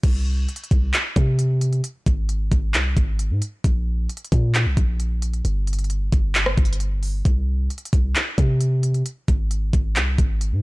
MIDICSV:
0, 0, Header, 1, 3, 480
1, 0, Start_track
1, 0, Tempo, 451128
1, 37, Time_signature, 4, 2, 24, 8
1, 11300, End_track
2, 0, Start_track
2, 0, Title_t, "808-style bass"
2, 0, Program_c, 0, 38
2, 37, Note_on_c, 0, 36, 114
2, 498, Note_off_c, 0, 36, 0
2, 757, Note_on_c, 0, 36, 105
2, 987, Note_off_c, 0, 36, 0
2, 1236, Note_on_c, 0, 48, 101
2, 1928, Note_off_c, 0, 48, 0
2, 2197, Note_on_c, 0, 32, 107
2, 2658, Note_off_c, 0, 32, 0
2, 2677, Note_on_c, 0, 32, 109
2, 2917, Note_on_c, 0, 36, 102
2, 2933, Note_off_c, 0, 32, 0
2, 3145, Note_off_c, 0, 36, 0
2, 3156, Note_on_c, 0, 32, 106
2, 3517, Note_on_c, 0, 44, 101
2, 3532, Note_off_c, 0, 32, 0
2, 3631, Note_off_c, 0, 44, 0
2, 3877, Note_on_c, 0, 34, 111
2, 4337, Note_off_c, 0, 34, 0
2, 4597, Note_on_c, 0, 46, 109
2, 4957, Note_on_c, 0, 36, 104
2, 4973, Note_off_c, 0, 46, 0
2, 5071, Note_off_c, 0, 36, 0
2, 5076, Note_on_c, 0, 34, 100
2, 5768, Note_off_c, 0, 34, 0
2, 5797, Note_on_c, 0, 31, 114
2, 6488, Note_off_c, 0, 31, 0
2, 6517, Note_on_c, 0, 31, 108
2, 6978, Note_off_c, 0, 31, 0
2, 6996, Note_on_c, 0, 31, 104
2, 7688, Note_off_c, 0, 31, 0
2, 7717, Note_on_c, 0, 36, 115
2, 8178, Note_off_c, 0, 36, 0
2, 8437, Note_on_c, 0, 36, 103
2, 8667, Note_off_c, 0, 36, 0
2, 8916, Note_on_c, 0, 48, 100
2, 9608, Note_off_c, 0, 48, 0
2, 9877, Note_on_c, 0, 32, 104
2, 10338, Note_off_c, 0, 32, 0
2, 10357, Note_on_c, 0, 32, 109
2, 10597, Note_on_c, 0, 36, 103
2, 10613, Note_off_c, 0, 32, 0
2, 10825, Note_off_c, 0, 36, 0
2, 10836, Note_on_c, 0, 32, 107
2, 11197, Note_on_c, 0, 44, 100
2, 11213, Note_off_c, 0, 32, 0
2, 11300, Note_off_c, 0, 44, 0
2, 11300, End_track
3, 0, Start_track
3, 0, Title_t, "Drums"
3, 37, Note_on_c, 9, 36, 115
3, 37, Note_on_c, 9, 42, 83
3, 37, Note_on_c, 9, 49, 107
3, 143, Note_off_c, 9, 36, 0
3, 143, Note_off_c, 9, 42, 0
3, 143, Note_off_c, 9, 49, 0
3, 517, Note_on_c, 9, 42, 70
3, 597, Note_off_c, 9, 42, 0
3, 597, Note_on_c, 9, 42, 68
3, 677, Note_off_c, 9, 42, 0
3, 677, Note_on_c, 9, 42, 67
3, 757, Note_off_c, 9, 42, 0
3, 757, Note_on_c, 9, 36, 99
3, 757, Note_on_c, 9, 42, 80
3, 863, Note_off_c, 9, 36, 0
3, 863, Note_off_c, 9, 42, 0
3, 996, Note_on_c, 9, 42, 89
3, 997, Note_on_c, 9, 39, 124
3, 1103, Note_off_c, 9, 42, 0
3, 1104, Note_off_c, 9, 39, 0
3, 1236, Note_on_c, 9, 36, 103
3, 1237, Note_on_c, 9, 42, 80
3, 1342, Note_off_c, 9, 36, 0
3, 1343, Note_off_c, 9, 42, 0
3, 1477, Note_on_c, 9, 42, 81
3, 1583, Note_off_c, 9, 42, 0
3, 1717, Note_on_c, 9, 42, 79
3, 1823, Note_off_c, 9, 42, 0
3, 1837, Note_on_c, 9, 42, 45
3, 1943, Note_off_c, 9, 42, 0
3, 1957, Note_on_c, 9, 42, 82
3, 2063, Note_off_c, 9, 42, 0
3, 2197, Note_on_c, 9, 36, 93
3, 2197, Note_on_c, 9, 42, 68
3, 2303, Note_off_c, 9, 36, 0
3, 2303, Note_off_c, 9, 42, 0
3, 2437, Note_on_c, 9, 42, 81
3, 2543, Note_off_c, 9, 42, 0
3, 2676, Note_on_c, 9, 42, 84
3, 2677, Note_on_c, 9, 36, 96
3, 2783, Note_off_c, 9, 36, 0
3, 2783, Note_off_c, 9, 42, 0
3, 2916, Note_on_c, 9, 42, 95
3, 2917, Note_on_c, 9, 39, 127
3, 3023, Note_off_c, 9, 39, 0
3, 3023, Note_off_c, 9, 42, 0
3, 3156, Note_on_c, 9, 36, 103
3, 3156, Note_on_c, 9, 42, 78
3, 3262, Note_off_c, 9, 36, 0
3, 3263, Note_off_c, 9, 42, 0
3, 3396, Note_on_c, 9, 42, 83
3, 3503, Note_off_c, 9, 42, 0
3, 3636, Note_on_c, 9, 42, 86
3, 3743, Note_off_c, 9, 42, 0
3, 3876, Note_on_c, 9, 42, 84
3, 3877, Note_on_c, 9, 36, 115
3, 3983, Note_off_c, 9, 36, 0
3, 3983, Note_off_c, 9, 42, 0
3, 4357, Note_on_c, 9, 42, 67
3, 4437, Note_off_c, 9, 42, 0
3, 4437, Note_on_c, 9, 42, 68
3, 4517, Note_off_c, 9, 42, 0
3, 4517, Note_on_c, 9, 42, 65
3, 4597, Note_off_c, 9, 42, 0
3, 4597, Note_on_c, 9, 36, 97
3, 4597, Note_on_c, 9, 42, 81
3, 4703, Note_off_c, 9, 36, 0
3, 4703, Note_off_c, 9, 42, 0
3, 4837, Note_on_c, 9, 39, 123
3, 4837, Note_on_c, 9, 42, 92
3, 4943, Note_off_c, 9, 42, 0
3, 4944, Note_off_c, 9, 39, 0
3, 5076, Note_on_c, 9, 36, 102
3, 5076, Note_on_c, 9, 42, 78
3, 5182, Note_off_c, 9, 36, 0
3, 5183, Note_off_c, 9, 42, 0
3, 5317, Note_on_c, 9, 42, 82
3, 5423, Note_off_c, 9, 42, 0
3, 5557, Note_on_c, 9, 42, 80
3, 5663, Note_off_c, 9, 42, 0
3, 5677, Note_on_c, 9, 42, 47
3, 5783, Note_off_c, 9, 42, 0
3, 5797, Note_on_c, 9, 42, 83
3, 5903, Note_off_c, 9, 42, 0
3, 6037, Note_on_c, 9, 42, 68
3, 6097, Note_off_c, 9, 42, 0
3, 6097, Note_on_c, 9, 42, 58
3, 6157, Note_off_c, 9, 42, 0
3, 6157, Note_on_c, 9, 42, 52
3, 6217, Note_off_c, 9, 42, 0
3, 6217, Note_on_c, 9, 42, 40
3, 6277, Note_off_c, 9, 42, 0
3, 6277, Note_on_c, 9, 42, 79
3, 6383, Note_off_c, 9, 42, 0
3, 6517, Note_on_c, 9, 36, 98
3, 6517, Note_on_c, 9, 42, 80
3, 6623, Note_off_c, 9, 36, 0
3, 6623, Note_off_c, 9, 42, 0
3, 6756, Note_on_c, 9, 42, 92
3, 6757, Note_on_c, 9, 39, 119
3, 6863, Note_off_c, 9, 42, 0
3, 6864, Note_off_c, 9, 39, 0
3, 6875, Note_on_c, 9, 37, 96
3, 6982, Note_off_c, 9, 37, 0
3, 6996, Note_on_c, 9, 36, 101
3, 6997, Note_on_c, 9, 42, 49
3, 7077, Note_off_c, 9, 42, 0
3, 7077, Note_on_c, 9, 42, 67
3, 7103, Note_off_c, 9, 36, 0
3, 7157, Note_off_c, 9, 42, 0
3, 7157, Note_on_c, 9, 42, 82
3, 7236, Note_off_c, 9, 42, 0
3, 7236, Note_on_c, 9, 42, 80
3, 7343, Note_off_c, 9, 42, 0
3, 7477, Note_on_c, 9, 46, 89
3, 7583, Note_off_c, 9, 46, 0
3, 7717, Note_on_c, 9, 36, 114
3, 7717, Note_on_c, 9, 42, 84
3, 7823, Note_off_c, 9, 36, 0
3, 7823, Note_off_c, 9, 42, 0
3, 8197, Note_on_c, 9, 42, 65
3, 8277, Note_off_c, 9, 42, 0
3, 8277, Note_on_c, 9, 42, 65
3, 8357, Note_off_c, 9, 42, 0
3, 8357, Note_on_c, 9, 42, 67
3, 8436, Note_off_c, 9, 42, 0
3, 8436, Note_on_c, 9, 42, 86
3, 8437, Note_on_c, 9, 36, 96
3, 8543, Note_off_c, 9, 36, 0
3, 8543, Note_off_c, 9, 42, 0
3, 8677, Note_on_c, 9, 42, 91
3, 8678, Note_on_c, 9, 39, 124
3, 8783, Note_off_c, 9, 42, 0
3, 8784, Note_off_c, 9, 39, 0
3, 8916, Note_on_c, 9, 36, 102
3, 8917, Note_on_c, 9, 42, 82
3, 9022, Note_off_c, 9, 36, 0
3, 9023, Note_off_c, 9, 42, 0
3, 9157, Note_on_c, 9, 42, 84
3, 9263, Note_off_c, 9, 42, 0
3, 9397, Note_on_c, 9, 42, 81
3, 9503, Note_off_c, 9, 42, 0
3, 9517, Note_on_c, 9, 42, 45
3, 9623, Note_off_c, 9, 42, 0
3, 9637, Note_on_c, 9, 42, 86
3, 9743, Note_off_c, 9, 42, 0
3, 9877, Note_on_c, 9, 36, 92
3, 9877, Note_on_c, 9, 42, 68
3, 9983, Note_off_c, 9, 36, 0
3, 9983, Note_off_c, 9, 42, 0
3, 10117, Note_on_c, 9, 42, 81
3, 10223, Note_off_c, 9, 42, 0
3, 10357, Note_on_c, 9, 36, 96
3, 10357, Note_on_c, 9, 42, 84
3, 10463, Note_off_c, 9, 36, 0
3, 10463, Note_off_c, 9, 42, 0
3, 10597, Note_on_c, 9, 39, 123
3, 10597, Note_on_c, 9, 42, 93
3, 10703, Note_off_c, 9, 42, 0
3, 10704, Note_off_c, 9, 39, 0
3, 10836, Note_on_c, 9, 36, 105
3, 10837, Note_on_c, 9, 42, 80
3, 10942, Note_off_c, 9, 36, 0
3, 10943, Note_off_c, 9, 42, 0
3, 11077, Note_on_c, 9, 42, 81
3, 11183, Note_off_c, 9, 42, 0
3, 11300, End_track
0, 0, End_of_file